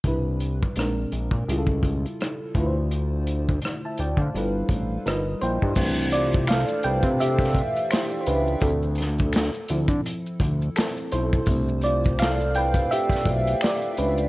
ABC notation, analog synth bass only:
X:1
M:4/4
L:1/16
Q:"Swing 16ths" 1/4=84
K:C
V:1 name="Analog synth bass" clef=bass
C,,4 _B,,,2 B,,, _B,, ^C,,4 z2 D,,2- | D,,4- D,, z D,, D, G,,,2 A,,,2 G,,,2 ^A,,, G,, | C,,4- C,, z C,, C,4 z3 _D,,2 | D,,4- D,, z D,, D, z2 D,,2 z2 B,,,2 |
C,,8 z2 B,,,2 z2 _D,,2 |]